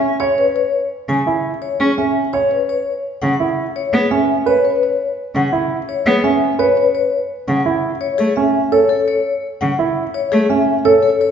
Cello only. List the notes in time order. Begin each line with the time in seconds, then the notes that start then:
1.09 C#3
1.80 C#4
3.22 C#3
3.93 B3
5.35 C#3
6.06 B3
7.48 C#3
8.19 A3
9.62 C#3
10.33 A3